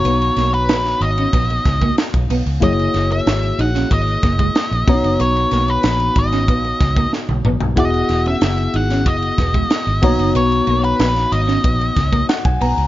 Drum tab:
RD |xxxxxxxxxxxxxxxx|xxxxxxxxxxxxxxxx|xxxxxxxxxxxx----|xxxxxxxxxxxxxxxx|
HH |p-------------o-|p-------------o-|p---------------|p-------------o-|
SD |--o-oo----o-o---|--o-o--o--o-o---|--o-o--o--o-o---|--o-o--o--o-o---|
T1 |----------------|----------------|-------------o--|----------------|
T2 |----------------|----------------|--------------o-|----------------|
FT |----------------|----------------|---------------o|----------------|
BD |--------o-oo-o--|o-------o-oo--o-|------o-o-oo----|o-------o-oo--o-|

RD |xxxxxxxxxxxxxxxx|
HH |p-------------o-|
SD |----oo-o--o-o---|
T1 |----------------|
T2 |----------------|
FT |----------------|
BD |--------o-oo-o--|